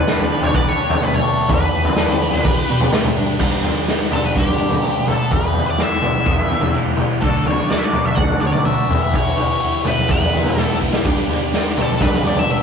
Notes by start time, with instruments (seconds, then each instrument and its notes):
Already playing: picked electric bass E2, overdriven electric guitar E3 B3 G4 B4, transistor combo organ D4 B4 G5 A5, lead electric guitar B4
0.07 overdriven electric guitar D4, snare, tambourine
0.19 floor tom
0.30 overdriven electric guitar G4
0.43 lead electric guitar C#5, floor tom
0.54 picked electric bass E3, overdriven electric guitar B4, lead electric guitar D5, kick
0.68 lead electric guitar C#5
0.79 overdriven electric guitar G4
0.90 floor tom
1.02 overdriven electric guitar A3, lead electric guitar B4, mid tom, tambourine
1.14 lead electric guitar C#5, floor tom
1.27 overdriven electric guitar D4
1.49 picked electric bass E2, overdriven electric guitar E3, transistor combo organ B5, kick, floor tom
1.53 lead electric guitar B4
1.85 floor tom
1.96 overdriven electric guitar D4, snare, tambourine
2.08 floor tom
2.21 overdriven electric guitar G4
2.33 floor tom
2.45 picked electric bass E3, overdriven electric guitar B4, kick
2.69 picked electric bass B2, overdriven electric guitar G4
2.80 floor tom
2.92 picked electric bass A2, overdriven electric guitar A3, snare, mid tom, tambourine
3.04 floor tom, mid tom
3.16 picked electric bass G2, overdriven electric guitar D4
3.39 picked electric bass G2, overdriven electric guitar G3 B3 D4 G4, transistor combo organ B4 D5 G5 B5, kick, floor tom, crash
3.53 tambourine
3.64 overdriven electric guitar B3 D4 G4, floor tom
3.77 tambourine
3.88 overdriven electric guitar G3 B3 D4 G4, snare, tambourine
4.11 overdriven electric guitar G3 B3 D4 G4, lead electric guitar A4, floor tom, mid tom, tambourine
4.23 lead electric guitar B4, floor tom, tambourine
4.35 picked electric bass G2, overdriven electric guitar G3 B3 D4 G4, lead electric guitar G4, kick, floor tom, tambourine
4.48 floor tom, tambourine
4.58 picked electric bass G2, overdriven electric guitar G3 B3 D4 G4, floor tom, tambourine
4.70 floor tom, mid tom, tambourine
4.83 overdriven electric guitar G3 B3 D4 G4, mid tom, tambourine
5.07 overdriven electric guitar B3 D4 G4, lead electric guitar A4, floor tom, mid tom, tambourine
5.31 picked electric bass E2, overdriven electric guitar E3 B3 E4 G4, lead electric guitar B4, transistor combo organ E5 F#5 G5, kick, floor tom
5.42 tambourine
5.55 overdriven electric guitar B3 E4 G4, floor tom
5.67 lead electric guitar D5, tambourine
5.79 overdriven electric guitar E3 B3 E4 G4, lead electric guitar E5, snare, tambourine
6.02 overdriven electric guitar E3 B3 E4 G4, floor tom, mid tom, tambourine
6.14 floor tom, tambourine
6.25 picked electric bass E2, overdriven electric guitar E3 B3 E4, kick, floor tom, tambourine
6.30 overdriven electric guitar G4
6.37 floor tom, tambourine
6.49 picked electric bass E2, overdriven electric guitar E3 B3 E4 G4, floor tom, tambourine
6.61 floor tom, mid tom, tambourine
6.74 overdriven electric guitar E3 B3 E4 G4, mid tom, tambourine
6.97 overdriven electric guitar E4 G4, floor tom, mid tom, tambourine
7.01 overdriven electric guitar B3
7.12 tambourine
7.21 picked electric bass D2, overdriven electric guitar D3 F#3 A3 D4 F#4, lead electric guitar A4, transistor combo organ D5 A5, kick, floor tom
7.25 transistor combo organ D6
7.34 tambourine
7.46 overdriven electric guitar A3 D4 F#4, lead electric guitar C#5, floor tom
7.58 tambourine
7.69 overdriven electric guitar F#3 A3 D4, lead electric guitar D5, snare, tambourine
7.74 overdriven electric guitar F#4, lead electric guitar E5
7.84 lead electric guitar D5
7.93 overdriven electric guitar F#3 A3 D4 F#4, floor tom, mid tom, tambourine
7.97 overdriven electric guitar D3
8.05 lead electric guitar E5, floor tom, tambourine
8.15 picked electric bass D2, lead electric guitar F#5, kick, floor tom, tambourine
8.19 overdriven electric guitar F#3 A3 D4 F#4
8.28 floor tom, tambourine
8.40 picked electric bass D2, overdriven electric guitar A3 D4 F#4, lead electric guitar D5, floor tom, tambourine
8.45 overdriven electric guitar D3 F#3, lead electric guitar C#5
8.53 lead electric guitar D5, floor tom, mid tom, tambourine
8.65 overdriven electric guitar F#3 A3, lead electric guitar E5, mid tom, tambourine
8.70 overdriven electric guitar D4 F#4
8.77 tambourine
8.88 picked electric bass E2, overdriven electric guitar G4, transistor combo organ G5 B5 E6, floor tom, mid tom, tambourine
8.92 overdriven electric guitar E3 B3 E4
9.01 lead electric guitar E5, tambourine
9.14 overdriven electric guitar E3 B3 E4 G4, lead electric guitar C#5, kick, floor tom
9.26 tambourine
9.37 overdriven electric guitar B3 E4 G4, floor tom
9.50 tambourine
9.62 overdriven electric guitar E3 B3 E4 G4, tambourine
9.85 overdriven electric guitar E3 B3 E4 G4, lead electric guitar B4, floor tom, mid tom, tambourine
9.98 floor tom, tambourine
10.09 picked electric bass E2, overdriven electric guitar E3 B3 E4 G4, lead electric guitar B4, kick, floor tom, tambourine
10.21 floor tom, tambourine
10.32 picked electric bass E2, overdriven electric guitar B3 E4 G4, floor tom, tambourine
10.37 overdriven electric guitar E3
10.45 floor tom, mid tom, tambourine
10.56 overdriven electric guitar E3 B3 E4, lead electric guitar A4, snare, mid tom, tambourine
10.61 overdriven electric guitar G4
10.81 overdriven electric guitar B3 E4 G4, kick, tambourine
10.93 snare
11.04 picked electric bass G2, overdriven electric guitar G3 B3 D4 G4, transistor combo organ D5 G5 D6, kick, floor tom
11.18 tambourine
11.29 overdriven electric guitar B3 D4 G4, floor tom
11.42 tambourine
11.53 overdriven electric guitar G3 B3 D4 G4, snare, tambourine
11.76 overdriven electric guitar G3 B3 D4 G4, floor tom, mid tom, tambourine
11.81 lead electric guitar A4
11.90 floor tom, tambourine
12.00 picked electric bass G2, overdriven electric guitar G3 B3 D4 G4, lead electric guitar B4, kick, floor tom, tambourine
12.13 floor tom, tambourine
12.24 picked electric bass G2, overdriven electric guitar G3 B3 D4 G4, lead electric guitar D5, floor tom
12.36 lead electric guitar E5, floor tom, mid tom, tambourine
12.48 overdriven electric guitar G3 B3 D4 G4, lead electric guitar E5, mid tom, tambourine